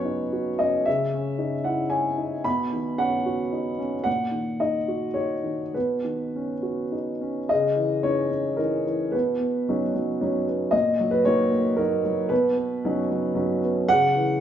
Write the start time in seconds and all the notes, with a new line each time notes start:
Already playing: B2 F#3 C#4 B4 C#5
0.05 D#4
0.33 F#4
0.59 C#4 D#5
0.85 C#3 E5
1.14 C#4
1.38 D#4
1.64 E4 F#5
1.90 C#5 G#5
2.18 D#4
2.44 B2 B5
2.73 D#3
2.98 C#4 F#5
3.26 F#4
3.52 D#4
3.79 C#4
4.04 A#2 F#5
4.31 D#3
4.60 D#4 D#5
4.88 F#4
5.14 D#4 C#5
5.44 D#3
5.74 B2 B4
6.04 D#3
6.36 C#4
6.63 F#4
6.92 D#4
7.21 C#4
7.49 C#3 D#5
7.76 E3
8.03 E3 C#4 D#4 C#5
8.31 C#4
8.57 E3 C#4 D#4 A#4
8.87 E3
9.12 B2 B4
9.39 B3
9.69 F#3 C#4 D#4
9.94 F#3
10.21 F#3 C#4 D#4
10.47 B3
10.71 A#2 D#5
10.99 F#3
11.11 B4
11.25 F#3 A#3 D#4 C#5
11.51 A#3
11.76 F#3 A#3 D#4 A#4
12.05 F#3
12.29 B2 B4
12.85 F#3 C#4 D#4
13.10 F#3
13.35 F#3 C#4 D#4
13.64 B3
13.89 C#3 F#5
14.16 E3